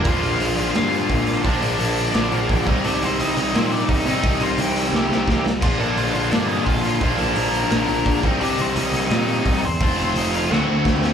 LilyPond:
<<
  \new Staff \with { instrumentName = "Lead electric guitar" } { \time 4/4 \key bes \major \tempo 4 = 172 <f' f''>2 <f' f''>2 | <d' d''>2 <d' d''>8 <bes bes'>4 r8 | <d' d''>8 <c' c''>8 <ees' ees''>8 <ees' ees''>8 <c' c''>8 <d' d''>8 <ees' ees''>8 <ees' ees''>8~ | <ees' ees''>8 <f' f''>8 <g' g''>4 <g' g''>4. r8 |
<f' f''>8 <d' d''>8 <f' f''>8 <f' f''>8 <d' d''>8 <ees' ees''>8 <f' f''>8 <f' f''>8~ | <f' f''>8 <a' a''>8 <bes' bes''>4 <bes' bes''>4. r8 | <d' d''>8 <c' c''>8 <ees' ees''>8 <ees' ees''>2 <c' c''>8 | <c' c''>8 <c' c''>8 <ees' ees''>8 <f' f''>8 <fis' fis''>4 r4 | }
  \new Staff \with { instrumentName = "Overdriven electric guitar" } { \clef bass \time 4/4 \key bes \major <bes, d f bes d'>1 | <bes, d f bes d'>2.~ <bes, d f bes d'>8 <c g c' ees'>8~ | <c g c' ees'>2.~ <c g c' ees'>8 <c g c' ees'>8~ | <c g c' ees'>2.~ <c g c' ees'>8 r8 |
<bes, d f bes d'>1 | <bes, d f bes d'>2.~ <bes, d f bes d'>8 <c g c' ees'>8~ | <c g c' ees'>2.~ <c g c' ees'>8 r8 | <f a c' f'>2 <d a c' fis'>2 | }
  \new Staff \with { instrumentName = "Picked electric bass" } { \clef bass \time 4/4 \key bes \major bes,,8 bes,,8 bes,,8 bes,,8 g,4 bes,,8 bes,8 | bes,,8 bes,,8 bes,,4 bes,,8 bes,,8 bes,,8 c,8 | c,8 c,8 c,8 c,8 bes,4 c,8 c8 | c,8 c,8 c,4 c,8 c,8 c,8 c,8 |
bes,,8 bes,,8 bes,,8 bes,,8 g,4 bes,,8 bes,8 | bes,,8 bes,,8 bes,,4 bes,,8 bes,,8 bes,,8 c,8 | c,8 c,8 c,8 c,8 bes,4 c,8 e,8 | f,,8 f,,8 f,,4 d,8 d,8 d,8 d,8 | }
  \new DrumStaff \with { instrumentName = "Drums" } \drummode { \time 4/4 <hho bd>8 hho8 hho8 hho8 <hho sn>8 hho8 <hho bd>8 hho8 | <hho bd>8 hho8 hho8 hho8 <hho sn>8 hho8 <hho bd>8 <hho bd>8 | hho8 hho8 hho8 hho8 <hho sn>8 hho8 <hho bd>8 hho8 | <hho bd>8 hho8 hho8 hho8 sn8 sn8 <bd sn>8 sn8 |
<cymc bd>8 hho8 hho8 hho8 <hho sn>8 hho8 <hho bd>8 hho8 | <hho bd>8 hho8 hho8 hho8 <hho sn>8 hho8 <hho bd>8 <hho bd>8 | hho8 hho8 hho8 hho8 <hho sn>8 hho8 <hho bd>8 hho8 | <hho bd>8 hho8 hho8 hho8 sn4 <bd sn>8 sn8 | }
>>